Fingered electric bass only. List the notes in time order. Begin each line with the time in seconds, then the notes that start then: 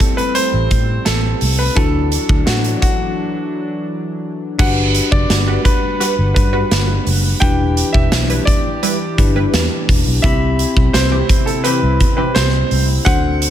0.54 A1
0.71 A2
1.06 A1
1.42 C2
1.76 D2
2.29 D2
2.47 A2
4.60 G1
5.12 F#1
5.30 G1
6.18 G1
6.36 G2
6.71 G1
7.06 F#1
7.42 E1
7.94 E1
8.12 B1
9.18 G1
9.53 E2
9.89 E1
10.07 B1
10.24 C2
10.77 B1
10.94 C2
11.83 C2
12.01 C3
12.36 C2
12.71 C2
13.06 D2